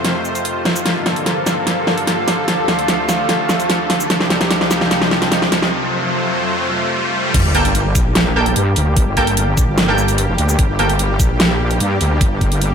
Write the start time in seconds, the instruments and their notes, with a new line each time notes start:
Already playing: supersaw synth F2 C3 A3 F4 C5, ambient pad G4 C5 F5 A5, riser
0.05 snare, closed hi-hat
0.25 shaker
0.35 closed hi-hat, shaker
0.45 closed hi-hat
0.65 snare, closed hi-hat
0.76 shaker
0.86 supersaw synth G2 D3 A#3 A4, snare, closed hi-hat
1.06 snare, closed hi-hat
1.16 closed hi-hat
1.26 snare, closed hi-hat
1.46 snare, open hi-hat, shaker
1.67 snare, closed hi-hat
1.87 snare
1.98 closed hi-hat
2.07 snare, closed hi-hat
2.28 snare, open hi-hat
2.48 supersaw synth D2 A3 F4, ambient pad D4, snare, closed hi-hat
2.68 snare, closed hi-hat
2.79 closed hi-hat
2.88 snare, closed hi-hat
3.09 snare, open hi-hat, shaker
3.29 snare, closed hi-hat
3.49 snare, shaker
3.60 closed hi-hat, shaker
3.70 snare, closed hi-hat
3.90 snare, open hi-hat
4.00 shaker
4.10 supersaw synth C2 C3 G3 D#4 G4, ambient pad C4, snare, closed hi-hat
4.20 snare
4.29 ambient pad F4, snare, closed hi-hat
4.41 snare, closed hi-hat
4.50 ambient pad D#5, snare, closed hi-hat
4.55 ambient pad A#4
4.61 snare
4.71 snare, open hi-hat, shaker
4.81 snare
4.91 snare, closed hi-hat
5.02 snare
5.11 snare
5.22 snare, closed hi-hat
5.32 snare, closed hi-hat
5.42 snare
5.52 snare, open hi-hat
5.62 snare
5.72 supersaw synth F2 A3 F4 C5
7.34 wobble bass G1, supersaw synth G3 A#3 G4, kick, closed hi-hat, crash, sub drop
7.55 synth stab A#3 A4 G5, closed hi-hat
7.65 closed hi-hat
7.75 closed hi-hat
7.95 wobble bass A#1, kick, open hi-hat, shaker
8.15 snare, closed hi-hat
8.36 synth stab A#3 A4 G5
8.46 closed hi-hat
8.56 wobble bass G2, closed hi-hat
8.76 wobble bass D2, open hi-hat
8.96 wobble bass G1, kick, closed hi-hat
9.17 synth stab A#3 A4 G5, kick, closed hi-hat
9.27 closed hi-hat
9.37 closed hi-hat
9.57 wobble bass A#1, kick, open hi-hat, shaker
9.68 wobble bass G1
9.78 snare, closed hi-hat
9.88 synth stab A#3 A4 G5
9.98 shaker
10.08 closed hi-hat, shaker
10.18 closed hi-hat
10.29 wobble bass F1
10.38 wobble bass D2, open hi-hat
10.49 shaker
10.59 wobble bass G1, kick, closed hi-hat
10.79 synth stab A#3 A4 G5, closed hi-hat
10.89 closed hi-hat
10.99 closed hi-hat
11.20 wobble bass A#1, kick, open hi-hat, shaker
11.40 snare, closed hi-hat
11.71 closed hi-hat
11.80 wobble bass G2, closed hi-hat
12.01 wobble bass D2, open hi-hat
12.21 wobble bass G1, kick, closed hi-hat
12.41 kick, closed hi-hat
12.52 closed hi-hat
12.61 closed hi-hat